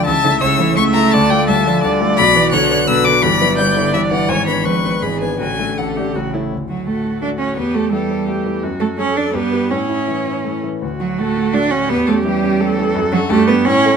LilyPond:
<<
  \new Staff \with { instrumentName = "Violin" } { \time 3/4 \key d \minor \tempo 4 = 169 a''4 e'''4 cis'''8 bes''8 | a''8 g''8 a''4 r4 | \key d \major b''4 fis'''4 e'''8 d'''8 | b''4 g'''4 e''8 fis''8 |
gis''8 b''8 cis'''4 b''8 gis''8 | gis''4 fis''4 r4 | r8 fis'8 a'4 d''8 cis''8 | b'8 a'8 g'2 |
r8 a'8 cis''8 d''8 b'4 | cis''2~ cis''8 r8 | r8 fis'8 a'4 d''8 cis''8 | b'8 a'8 g'2 |
r8 fis'8 a'8 b'8 cis''4 | }
  \new Staff \with { instrumentName = "Viola" } { \time 3/4 \key d \minor e''4 cis''4 e''4 | d''4 e''4 d''4~ | \key d \major d''4 cis''4 b'4 | d''2. |
cis''4 b'4 gis'4 | fis'4 a'8 g'8 fis'8 e'8 | r4 fis'2 | g'4 a'4 g'4 |
fis'4 a'4 g'4 | e'2~ e'8 r8 | fis'2. | g'2 a'4~ |
a'4 g'4 e'4 | }
  \new Staff \with { instrumentName = "Grand piano" } { \time 3/4 \key d \minor <cis, cis>8 <a e' e''>8 <cis, cis>8 <a e' e''>8 <cis, cis>8 <a e' e''>8 | <d, d>8 <a f' d''>8 <d, d>8 <a f' d''>8 <d, d>8 <a f' d''>8 | \key d \major <b,, b,>8 <b fis' d''>8 <b,, b,>8 <b fis' d''>8 <b,, b,>8 <b fis' d''>8 | <g,, g,>8 <b e' b'>8 <g,, g,>8 <b e' b'>8 <g,, g,>8 <b e' b'>8 |
<gis,, gis,>8 <b d' b'>8 <gis,, gis,>8 <b d' b'>8 <gis,, gis,>8 <b d' b'>8 | <a,, a,>8 <a d' d''>8 <a,, a,>8 <a d' d''>8 <a,, a,>8 <a e' cis''>8 | d,8 fis'8 a,8 fis'8 a8 a,8 | e,8 a'8 e8 a'8 a8 e8 |
fis,8 a'8 fis8 a'8 g,8 <g' b'>8 | a,8 e'8 e8 e'8 a8 e8 | d,8 fis'8 a,8 fis'8 a8 a,8 | e,8 cis'8 e8 cis'8 a8 e8 |
fis,8 <d' a'>8 g,8 <d' b'>8 a,8 <a a'>8 | }
  \new Staff \with { instrumentName = "Cello" } { \clef bass \time 3/4 \key d \minor e8 d8 cis8 e8 a4~ | a4 g8 f8 g4 | \key d \major fis8 e8 d4 d4 | e8 fis8 g8 d8 e4~ |
e4 eis8 eis8 e4 | d2 cis8 r8 | r8 fis8 a4 d'8 cis'8 | b8 a8 g2 |
r8 a8 cis'8 d'8 b4 | cis'2~ cis'8 r8 | r8 fis8 a4 d'8 cis'8 | b8 a8 g2 |
r8 fis8 a8 b8 cis'4 | }
>>